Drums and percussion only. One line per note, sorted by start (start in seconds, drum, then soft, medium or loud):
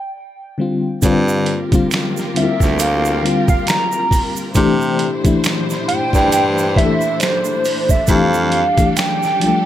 1.02 kick loud
1.02 closed hi-hat medium
1.02 shaker medium
1.28 shaker soft
1.46 closed hi-hat medium
1.72 kick loud
1.72 closed hi-hat soft
1.72 shaker soft
1.91 finger snap medium
1.91 snare loud
1.91 closed hi-hat medium
1.91 shaker medium
1.94 finger snap medium
2.17 snare soft
2.17 shaker soft
2.36 closed hi-hat medium
2.60 kick medium
2.60 snare soft
2.60 shaker soft
2.79 closed hi-hat medium
2.79 shaker medium
3.05 shaker soft
3.26 closed hi-hat medium
3.48 kick medium
3.48 shaker soft
3.67 finger snap medium
3.67 snare loud
3.67 closed hi-hat medium
3.67 shaker medium
3.70 finger snap medium
3.92 shaker soft
4.11 kick medium
4.11 open hi-hat soft
4.11 shaker soft
4.36 shaker medium
4.55 kick loud
4.55 closed hi-hat medium
4.55 shaker medium
4.81 shaker soft
4.99 closed hi-hat medium
5.25 kick loud
5.25 closed hi-hat soft
5.25 shaker soft
5.44 finger snap medium
5.44 snare loud
5.44 closed hi-hat medium
5.44 shaker medium
5.46 finger snap medium
5.70 snare soft
5.70 shaker soft
5.89 closed hi-hat medium
6.13 kick medium
6.13 snare soft
6.13 shaker soft
6.32 closed hi-hat medium
6.32 shaker medium
6.58 shaker soft
6.76 kick medium
6.76 closed hi-hat medium
7.01 shaker soft
7.20 finger snap medium
7.20 snare loud
7.20 closed hi-hat medium
7.20 shaker medium
7.23 finger snap medium
7.45 shaker soft
7.65 open hi-hat soft
7.65 shaker soft
7.89 kick medium
7.89 shaker soft
8.07 kick loud
8.07 closed hi-hat medium
8.07 shaker medium
8.34 shaker soft
8.52 closed hi-hat medium
8.77 kick medium
8.77 closed hi-hat soft
8.77 shaker soft
8.97 finger snap medium
8.97 snare loud
8.97 closed hi-hat medium
8.97 shaker medium
8.99 finger snap medium
9.23 snare soft
9.23 shaker soft
9.41 closed hi-hat medium